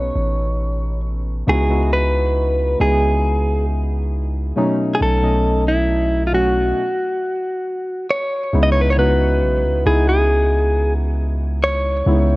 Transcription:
Already playing: B1 B2 B3 C#4 D#4 A4 B4 C#5
0.15 A1
1.47 C#2 C#3 G#3 B3 D#4 E4 F#4 G#4
1.69 C#3 G#3 B3 D#4 E4 F#4
1.93 B4
2.80 C#2 C#3 G#3 B3 D#4 E4 G#4
4.56 B2 F#3 A3 C#4 D#4
4.95 G#4
5.01 B1 A4
5.22 B2 F#3 A3 C#4 D#5
5.68 E4
6.27 F4
6.32 B2 F#3 A3 C#4 F#4
8.11 C#5
8.53 C#2 C#3 G#3 B3 D#4 E4
8.63 D#5
8.72 C#5
8.81 B4
8.90 C#5
8.97 C#3 G#3 B3 D#4 F#4 B4
9.42 B1
9.64 C#2
9.85 C#2 C#3 G#3 B3 D#4 E4 G#4
10.09 G#4
11.64 C#5
12.06 C#2 C#3 G#3 B3 D#4 E4

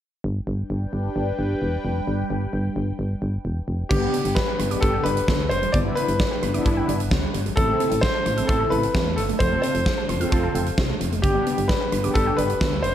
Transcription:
0.24 G1 G3 D4 B4 G5
0.47 G1
0.70 G1
0.93 G1
1.16 G1
1.39 G1
1.62 E1
1.85 F1
2.08 G1
2.30 G1
2.53 G1
2.76 G1
2.99 G1
3.22 G1
3.45 E1
3.68 F1
3.89 G1 D3 B3 D4 G4, kick, crash
4.02 G3
4.14 B3, closed hi-hat
4.25 G1, closed hi-hat
4.35 B4 D5, kick, snare
4.48 G5
4.59 G1 D4 F4 B5, closed hi-hat
4.71 B3 D4 G4 D6, closed hi-hat
4.81 G1 A4 B5, kick, closed hi-hat
4.94 G5
5.04 G1 B4 D5, closed hi-hat
5.17 closed hi-hat
5.28 D2 B3, kick, snare
5.40 G3
5.49 F1 C5, closed hi-hat
5.62 G3, closed hi-hat
5.72 G1 D3 B3 D4 E4 D5, kick, closed hi-hat
5.85 G3
5.95 B3 B4, closed hi-hat
6.08 G1, closed hi-hat
6.20 D5, kick, snare
6.31 G5
6.43 G1 D4 E4 B5, closed hi-hat
6.54 B3 D4 E4 D6, closed hi-hat
6.66 G1 B5, kick, closed hi-hat
6.77 G5
6.88 G1 D5, closed hi-hat
7.00 closed hi-hat
7.11 D2 B3, kick, snare
7.23 G3
7.34 G1, closed hi-hat
7.46 G3, closed hi-hat
7.56 A1 E3 C4 E4 A4, kick, closed hi-hat
7.69 A3
7.80 C4, closed hi-hat
7.91 A1, closed hi-hat
8.01 C5 E5, kick, snare
8.14 A5
8.26 A1 E4 A4 C6, closed hi-hat
8.37 C4 E4 A4 E6, closed hi-hat
8.47 A1 A4 C6, kick, closed hi-hat
8.60 A5
8.70 A1 B4 E5, closed hi-hat
8.83 closed hi-hat
8.95 E2 C4, kick, snare
9.06 A3
9.16 G1 A4, closed hi-hat
9.29 A3, closed hi-hat
9.39 F1 F3 C4 F4 A4 C5, kick, closed hi-hat
9.52 A3
9.62 C4 C5, closed hi-hat
9.75 F1, closed hi-hat
9.86 F5, kick, snare
9.98 A5
10.09 F1 F4 A4 C6, closed hi-hat
10.20 C4 F4 A4 F6, closed hi-hat
10.32 F1 C6, kick, closed hi-hat
10.43 A5
10.55 F1 F5, closed hi-hat
10.66 closed hi-hat
10.78 C2 C4, kick, snare
10.89 A3
11.01 F1, closed hi-hat
11.12 A3, closed hi-hat
11.22 G1 D3 B3 D4 G4, kick, closed hi-hat
11.35 G3
11.46 B3, closed hi-hat
11.58 G1, closed hi-hat
11.68 B4 D5, kick, snare
11.81 G5
11.92 G1 D4 F4 B5, closed hi-hat
12.04 B3 D4 G4 D6, closed hi-hat
12.14 G1 A4 B5, kick, closed hi-hat
12.27 G5
12.37 G1 B4 D5, closed hi-hat
12.50 closed hi-hat
12.61 D2 B3, kick, snare
12.72 G3
12.83 F1 C5, closed hi-hat

